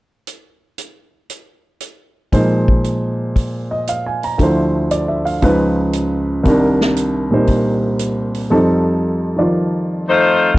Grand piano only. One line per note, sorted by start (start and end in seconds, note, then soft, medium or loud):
2.32 4.39 A#2 soft
2.32 4.39 F3 soft
2.32 4.39 G#3 soft
2.32 4.39 D#4 soft
2.32 4.40 C5 soft
3.71 3.98 D#5 soft
3.89 4.21 F5 soft
4.06 4.33 G#5 soft
4.24 4.50 A#5 soft
4.38 5.42 D2 soft
4.38 5.43 D3 soft
4.38 5.41 F3 soft
4.42 5.44 E4 soft
4.42 5.44 C5 soft
4.91 5.24 D5 soft
5.08 5.35 E5 soft
5.25 5.52 F5 soft
5.42 6.45 C#2 soft
5.42 6.46 C#3 soft
5.42 6.45 F3 soft
5.42 6.46 D#4 soft
5.42 6.46 B4 medium
6.43 8.51 C2 medium
6.43 8.51 C3 soft
6.43 8.52 D#3 soft
6.48 8.53 D4 soft
6.48 8.53 A#4 medium
7.30 8.51 A#2 soft
7.30 8.50 G3 soft
7.30 8.50 D#4 soft
7.30 8.52 C5 soft
8.50 10.57 F2 medium
8.50 9.36 F3 soft
8.50 10.58 G3 soft
8.50 10.58 D#4 soft
8.50 10.58 A4 soft
9.36 10.57 D#3 soft
9.36 10.58 F3 soft
9.36 10.59 F4 soft
9.36 10.58 D5 soft